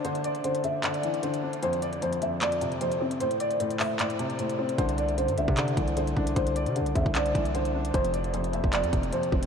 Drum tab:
HH |xxxxxxx-xxxxxx-x|xxxxxxx-xxxxxx-x|xxxxxxo-xxxxxx-x|xxxxxxx-xxxxxx-x|
CP |--------x-------|--------x-------|------x-x-------|--------x-------|
BD |----------------|----------------|----------------|o------o--o---o-|

HH |xxxxxxx-xxxxxx-x|xxxxxxx-xxxxxx-x|
CP |--------x-------|--------x-------|
BD |o-----oo--o-----|o------o--o---o-|